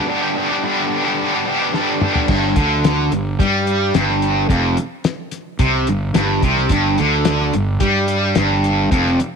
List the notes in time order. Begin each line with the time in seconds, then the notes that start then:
0.07 G2 D3 G3 B3 D4 G4
0.21 G3 B3 D4 G4
0.35 G3 B3 D4 G4
0.49 G3 B3 D4 G4
0.63 G2 D3 G3 B3 D4 G4
1.05 G3 B3 D4 G4
1.34 G3 B3 D4 G4
1.46 G3 B3 D4 G4
1.59 G3 B3 D4 G4
1.72 G2 D3 G3 B3 D4 G4, snare
2.00 G3 B3 D4 G4, mid tom
2.13 G3 B3 D4 G4, floor tom
2.28 G1 G2, kick, crash
2.56 D2 D3, kick, closed hi-hat
2.84 snare, closed hi-hat
3.12 G1 G2, closed hi-hat
3.39 G2 G3, kick, closed hi-hat
3.67 closed hi-hat
3.94 G1 G2, snare, closed hi-hat
4.09 snare
4.22 closed hi-hat
4.49 F1 F2, kick, closed hi-hat
4.77 closed hi-hat
5.04 snare, closed hi-hat
5.31 snare, closed hi-hat
5.59 C2 C3, kick, closed hi-hat
5.87 G1 G2, closed hi-hat
6.14 G1 G2, snare, closed hi-hat
6.42 C2 C3, kick, closed hi-hat
6.57 snare
6.69 G1 G2, kick, closed hi-hat
6.98 D2 D3, closed hi-hat
7.25 snare, closed hi-hat
7.53 G1 G2, closed hi-hat
7.80 G2 G3, kick, closed hi-hat
8.08 closed hi-hat
8.35 G1 G2, snare, closed hi-hat
8.64 closed hi-hat
8.91 F1 F2, kick, closed hi-hat
9.07 snare
9.20 closed hi-hat